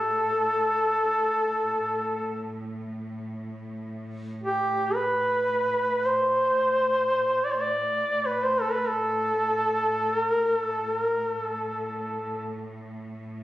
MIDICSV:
0, 0, Header, 1, 3, 480
1, 0, Start_track
1, 0, Key_signature, 0, "minor"
1, 0, Tempo, 500000
1, 12897, End_track
2, 0, Start_track
2, 0, Title_t, "Duduk"
2, 0, Program_c, 0, 69
2, 0, Note_on_c, 0, 69, 88
2, 2520, Note_off_c, 0, 69, 0
2, 4262, Note_on_c, 0, 67, 73
2, 4753, Note_on_c, 0, 71, 78
2, 4768, Note_off_c, 0, 67, 0
2, 5816, Note_on_c, 0, 72, 97
2, 5831, Note_off_c, 0, 71, 0
2, 7145, Note_on_c, 0, 74, 90
2, 7159, Note_off_c, 0, 72, 0
2, 7216, Note_on_c, 0, 72, 80
2, 7230, Note_off_c, 0, 74, 0
2, 7306, Note_on_c, 0, 74, 102
2, 7321, Note_off_c, 0, 72, 0
2, 7930, Note_on_c, 0, 71, 86
2, 7944, Note_off_c, 0, 74, 0
2, 8105, Note_on_c, 0, 72, 88
2, 8119, Note_off_c, 0, 71, 0
2, 8264, Note_on_c, 0, 69, 93
2, 8278, Note_off_c, 0, 72, 0
2, 8372, Note_on_c, 0, 71, 91
2, 8387, Note_off_c, 0, 69, 0
2, 8524, Note_on_c, 0, 69, 97
2, 8538, Note_off_c, 0, 71, 0
2, 9801, Note_off_c, 0, 69, 0
2, 9801, Note_on_c, 0, 70, 97
2, 10146, Note_off_c, 0, 70, 0
2, 10146, Note_on_c, 0, 69, 97
2, 10521, Note_off_c, 0, 69, 0
2, 10521, Note_on_c, 0, 70, 97
2, 10876, Note_off_c, 0, 70, 0
2, 10876, Note_on_c, 0, 69, 97
2, 12140, Note_off_c, 0, 69, 0
2, 12897, End_track
3, 0, Start_track
3, 0, Title_t, "Cello section"
3, 0, Program_c, 1, 48
3, 0, Note_on_c, 1, 45, 43
3, 1672, Note_off_c, 1, 45, 0
3, 1684, Note_on_c, 1, 45, 44
3, 12897, Note_off_c, 1, 45, 0
3, 12897, End_track
0, 0, End_of_file